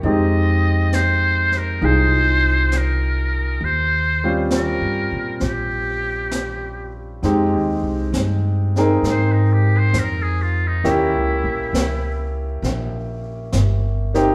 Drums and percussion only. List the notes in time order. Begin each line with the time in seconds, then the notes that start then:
0.03 brush sweep
0.92 snare, hi-hat pedal
1.52 snare
1.82 brush sweep
2.72 snare, hi-hat pedal
3.60 brush sweep
4.50 snare, hi-hat pedal
5.40 brush sweep, snare
6.31 snare, hi-hat pedal
7.23 brush sweep, snare
8.13 snare, hi-hat pedal
8.76 snare
9.04 brush sweep, snare
9.94 snare, hi-hat pedal
10.85 brush sweep, snare
11.74 snare, hi-hat pedal
12.63 brush sweep, snare
13.52 snare, hi-hat pedal
14.14 snare